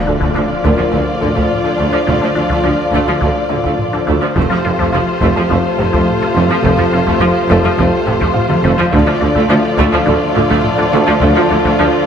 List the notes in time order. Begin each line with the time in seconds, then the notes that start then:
Already playing: D3 F3 F4 D5 F5, impact
0.07 D2 D3 D4
0.20 D2 D3 A3, taiko
0.35 D2 F3 D4
0.64 D2 D3 A3 A#3 A#4, taiko
0.78 D2 F3
0.92 D2 D3 A3, taiko
1.21 D2 D3 A3, taiko low-mid
1.35 D2 D3 A3, taiko
1.51 taiko low-mid
1.64 D2 D3 D4
1.78 D2 D3 A3
1.92 D2 F3 D4
2.07 D2 D3 A3, taiko
2.22 D2 F3 D4
2.35 D2 D3 D4
2.50 D2 D3 A3, taiko
2.64 D2 F3 D4
2.92 D2 D3 A3, taiko
3.07 D2 F3
3.21 D2 D3 A3, taiko
3.49 D2 D3 A3, taiko low-mid
3.64 D2 D3 A3, taiko
3.79 taiko low-mid
3.93 D2 D3 D4
4.07 D2 D3 A3
4.22 D2 F3 D4
4.35 F1 F2 C3 F3 A3 F4 A4 C5 F5, taiko
4.50 F2 F3 F4
4.65 F1 F2 C3 F4
4.79 F2 F3 A3, taiko
4.93 F1 F2 F3 F4
5.22 F1 F2 F3 A3, taiko
5.36 F2 F3 A3
5.50 F1 F2 F3 A3, taiko
5.78 F1 F2 C3 C4, taiko low-mid
5.93 F2 F3 A3, taiko
6.08 taiko low-mid
6.22 F2 C3 F4
6.35 F1 F2 F3 A3
6.50 F2 F3 F4
6.64 F1 F2 F3 A3, taiko
6.78 F2 F3 F4
6.93 F1 F2 C3 F4
7.06 F2 F3 A3, taiko
7.20 F1 F2 F3 F4
7.49 F1 F2 F3 A3 A4, taiko
7.63 F2 F3 A3
7.78 F1 F2 F3 A3, taiko
8.07 F1 F2 C3 C4, taiko low-mid
8.21 F2 F3 A3, taiko
8.34 F4 F5, taiko low-mid
8.49 F2 C3 F4, taiko mid
8.64 F1 F2 F3 A3, taiko mid
8.78 F2 F3 F4, taiko low
8.92 D2 D3 F3 A3 F4 A4 D5 F5, taiko
9.07 D2 F3 D4
9.21 D2 D3 D4
9.35 D2 D3 A3, taiko
9.49 D2 F3 D4
9.77 D2 D3 A3, taiko
9.92 D2 F3
10.06 D2 D3 A3, taiko
10.35 D2 D3 A3, taiko low-mid
10.50 D2 D3 A3, taiko
10.65 taiko low-mid
10.78 D2 D3 D4
10.93 D2 D3 A3
11.07 D2 F3 D4
11.21 D2 D3 A3, taiko
11.36 D2 F3 D4
11.50 D2 D3 D4
11.65 D2 D3 A3, taiko
11.79 D2 F3 D4